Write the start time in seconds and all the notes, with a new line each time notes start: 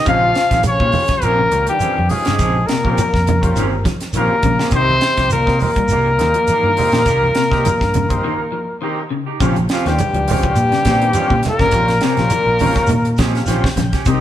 0.05 A#1 C#3 F3 C4 C#4 F4 G4 C5 F5, kick, closed hi-hat, shekere
0.09 F3 F4
0.22 muted clean electric guitar stroke
0.34 muted clean electric guitar stroke, snare, closed hi-hat, shekere
0.51 A#1 D#3 C4 C#4 G4, kick, snare, closed hi-hat
0.63 muted clean electric guitar stroke, closed hi-hat, high conga, low conga, shekere
0.67 C#3 C#4 C#5
0.79 A#2 C#4 F4 G4 C5, muted clean electric guitar stroke, kick
0.92 open hi-hat, high conga, low conga, shekere
1.08 F3, muted fingered electric bass stroke, muted clean electric guitar stroke, kick, snare, closed hi-hat
1.22 A#1 A#2 F3 A#3 C4 C#4 G4 A#4, closed hi-hat, shekere
1.39 C#3, muted clean electric guitar stroke
1.51 C#2 C#4 F4 G4 A#4, muted clean electric guitar stroke, closed hi-hat, high conga, shekere
1.67 G2 D#3 G4, closed hi-hat
1.72 G3
1.80 F3 C4 C#4 G4, muted fingered electric bass stroke, closed hi-hat, high conga, shekere
1.96 F2, muted clean electric guitar stroke, high conga
2.09 G#2 G#3 C#4 F4 G4 G#4 D#5, muted clean electric guitar stroke, open hi-hat, low conga, shekere
2.25 G2 C#3 C4 C#4 G4, snare, closed hi-hat
2.39 A#1 F3 C4 C#4 G4, kick, snare, closed hi-hat, shekere
2.56 muted clean electric guitar stroke
2.66 A#2 C3 A#3 A#4, muted fingered electric bass stroke, muted clean electric guitar stroke, snare, closed hi-hat, shekere
2.84 A#1 C4 C#4 F4 G4 A#4, kick
2.98 F3, muted clean electric guitar stroke, closed hi-hat, high conga, shekere
3.14 F2, kick, snare
3.27 C#3, closed hi-hat, high conga, low conga, shekere
3.41 C#4 F4 G4 C5, muted clean electric guitar stroke, kick, closed hi-hat
3.56 G1 D#3 F3 C4 C#4 G4, closed hi-hat, shekere
3.72 muted clean electric guitar stroke
3.85 F3, muted clean electric guitar stroke, kick, snare, closed hi-hat, high conga, shekere
4.00 snare, closed hi-hat
4.13 A#1 D#3 F3 C4 C#4 F4 G4 C5, closed hi-hat, high conga, shekere
4.17 A#2 A#3 G4 A#4
4.33 muted clean electric guitar stroke
4.43 A#1 C#3, kick, closed hi-hat, low conga, shekere
4.47 muted clean electric guitar stroke
4.59 C4 C#4 G4, snare
4.71 C2 D#3 C4 D#4 G4 A#4, kick, closed hi-hat, shekere
4.75 C3 C4 D#4 G4 C5, muted clean electric guitar stroke
4.90 muted clean electric guitar stroke, high conga
5.01 muted clean electric guitar stroke, snare, closed hi-hat, shekere
5.17 C2 F3 D#4 G4, kick, snare, closed hi-hat
5.30 A#3 A#4, muted clean electric guitar stroke, closed hi-hat, high conga, shekere
5.35 A#2
5.46 C3 C4 D#4 G4 C5, muted clean electric guitar stroke, kick, snare
5.59 A#3 A#4, open hi-hat, high conga, low conga, shekere
5.64 A#2
5.76 G3, muted fingered electric bass stroke, muted clean electric guitar stroke, kick, closed hi-hat
5.88 C2 A#3, muted clean electric guitar stroke, closed hi-hat, shekere
5.92 G4, low conga
6.08 muted clean electric guitar stroke
6.18 D#2 C4 D#4 G4 A#4, snare, closed hi-hat, high conga, shekere
6.22 muted clean electric guitar stroke
6.34 F3, closed hi-hat
6.47 A#3, muted fingered electric bass stroke, closed hi-hat, high conga, shekere
6.51 D#4 G4
6.63 G2 D#3, muted clean electric guitar stroke
6.77 C4 D#4 G4 C5, muted clean electric guitar stroke, open hi-hat, low conga, shekere
6.92 A#2 D#3 D#4 G4, snare, closed hi-hat, high conga
7.06 C2 A#3 D#4 G4, kick, snare, closed hi-hat, shekere
7.22 muted clean electric guitar stroke, high conga
7.35 C3, muted fingered electric bass stroke, muted clean electric guitar stroke, snare, closed hi-hat, shekere
7.51 C2 C4 D#4 G4 A#4, kick, snare
7.65 F3, muted clean electric guitar stroke, closed hi-hat, high conga, low conga, shekere
7.81 G2, kick, snare
7.94 C#3, closed hi-hat, high conga, low conga, shekere
8.09 C4 D#4 G4 C5, muted clean electric guitar stroke, kick, closed hi-hat, high conga
8.23 D#3 A#3 D#4, muted clean electric guitar stroke
8.40 muted clean electric guitar stroke
8.52 F3, muted clean electric guitar stroke
8.81 D#3 A#3 C4 D#4 G4 A#4
8.99 muted clean electric guitar stroke
9.10 C#3, muted clean electric guitar stroke
9.26 D#4 G4
9.40 A#1 C#3 F3 C4 C#4 F4 G4 C5, kick, closed hi-hat, shekere
9.56 muted clean electric guitar stroke, closed hi-hat, high conga
9.69 F2 F3 C4 C#4 F4 G4, snare, closed hi-hat, shekere
9.73 F3
9.86 D#2 G2 D#3 G3 C#4 F4 G4 C5, muted clean electric guitar stroke, snare, closed hi-hat
9.98 closed hi-hat, high conga, low conga, shekere
10.13 C#2 F3, muted clean electric guitar stroke, closed hi-hat
10.27 F3 C4 C#4 F4 G4 C5, open hi-hat, high conga, low conga, shekere
10.32 G2 G3 G4
10.43 F3, muted clean electric guitar stroke, kick, closed hi-hat
10.55 A#2, muted clean electric guitar stroke, closed hi-hat, shekere
10.72 C#3, muted clean electric guitar stroke, snare, closed hi-hat
10.85 A#2 C4 C#4 G4, kick, snare, closed hi-hat, high conga, shekere
11.01 D#3, closed hi-hat
11.13 F3 C4 C#4 F4 G4 C5, closed hi-hat, high conga, shekere
11.30 A#2 C#3, muted clean electric guitar stroke, kick
11.43 A#3, muted clean electric guitar stroke, snare, closed hi-hat, low conga, shekere
11.49 A#2 A#4
11.59 G1 C#3 C4 C#4 G4, kick, snare, high conga
11.71 A#1 C#4 F4 G4, kick, closed hi-hat, shekere
11.76 C5
11.88 muted clean electric guitar stroke, snare, closed hi-hat
12.01 C3 C4 C#4 G4, muted clean electric guitar stroke, snare, closed hi-hat, shekere
12.06 A#2 A#4
12.10 A#3
12.17 A#1 C#4 F4 G4 C5, muted clean electric guitar stroke, snare, closed hi-hat
12.30 F3, closed hi-hat, high conga, shekere
12.45 A#1, muted clean electric guitar stroke
12.59 C#3 F3 C4 C#4 F4 G4 C#5, open hi-hat, high conga, low conga, shekere
12.75 muted clean electric guitar stroke, kick, snare, closed hi-hat
12.87 A#2 D#3, muted clean electric guitar stroke, closed hi-hat, low conga, shekere
13.05 muted clean electric guitar stroke, closed hi-hat
13.17 F3 C4 C#4 G4 D#5, kick, snare, closed hi-hat, high conga, shekere
13.35 F5, snare, closed hi-hat
13.46 A#1 D#3 F3 C4 C#4 F4 G4 C5 G5, snare, closed hi-hat, high conga, shekere
13.64 muted clean electric guitar stroke, kick, snare, high conga
13.76 A#1 C#3, muted clean electric guitar stroke, snare, closed hi-hat, low conga, shekere
13.93 C#4 G4, kick, snare, closed hi-hat
14.05 C2 C3 C4 D#4 G4 A#4, muted clean electric guitar stroke, kick, closed hi-hat, shekere